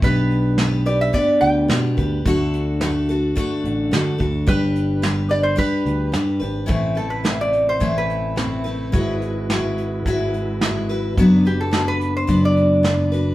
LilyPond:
<<
  \new Staff \with { instrumentName = "Resonator guitar played with a steel bar" } { \time 4/4 \key a \dorian \tempo 4 = 108 b'4. d''16 e''16 d''8 g''4 r8 | r1 | b'4. d''16 c''16 b'4 r4 | r8 a'16 b'8 d''8 c''8 b'4.~ b'16~ |
b'8. r2. r16 | r8 g'16 a'8 b'8 c''8 d''4.~ d''16 | }
  \new Staff \with { instrumentName = "Steel-string acoustic guitar" } { \time 4/4 \key a \dorian <b d' g' b'>4 <b d' g' b'>8 <d' g' b'>8 <b d' g' b'>4 <b d' g' b'>8 <d' g' b'>8 | <d a d' fis' a'>4 <a d' fis' a'>8 <d' fis' a'>8 <d a d' fis' a'>4 <a d' fis' a'>8 <d' fis' a'>8 | <g d' g' b'>4 <g d' g' b'>8 <d' g' b'>8 <g d' g' b'>4 <g d' g' b'>8 <d' g' b'>8 | <a, e a c' e' b'>8 <a c' e' b'>8 <a c' e' b'>4 <a, e a c' e' b'>4 <a c' e' b'>8 <a c' e' b'>8 |
<gis e' fis' b'>4 <gis e' fis' b'>4 <gis e' fis' b'>4 <gis e' fis' b'>8 <e' fis' b'>8 | <fis b d' fis' b'>8 <d' fis' b'>8 <b d' fis' b'>4 <fis b d' fis' b'>4 <b d' fis' b'>8 <d' fis' b'>8 | }
  \new Staff \with { instrumentName = "Tonewheel organ" } { \time 4/4 \key a \dorian r1 | r1 | r1 | <c a>1 |
<gis e' fis' b'>1 | <fis b d'>1 | }
  \new Staff \with { instrumentName = "Fingered electric bass" } { \clef bass \time 4/4 \key a \dorian b,,2 r8 d,8 b,8 d,8 | d,2 r8 a,,8 d8 d,8 | g,,2 r8 d,8 g,8 gis,,8 | a,,2 a,,2 |
gis,,2 gis,,2 | fis,,2 fis,,2 | }
  \new DrumStaff \with { instrumentName = "Drums" } \drummode { \time 4/4 <hh bd>8 hh8 <hh sn>8 hh8 <hh bd>8 hh8 <hh sn>8 <hh bd>8 | <hh bd>8 hh8 <hh sn>8 hh8 <hh bd>8 hh8 <hh sn>8 <hh bd>8 | <hh bd>8 hh8 <hh sn>8 hh8 <hh bd>8 hh8 <hh sn>8 hh8 | <hh bd>8 hh8 <hh sn>8 hh8 <hh bd>8 hh8 <hh sn>8 hh8 |
<hh bd>8 hh8 <hh sn>8 hh8 <hh bd>8 hh8 <hh sn>8 hh8 | <hh bd>8 hh8 <hh sn>8 hh8 <hh bd>8 hh8 <hh sn>8 hh8 | }
>>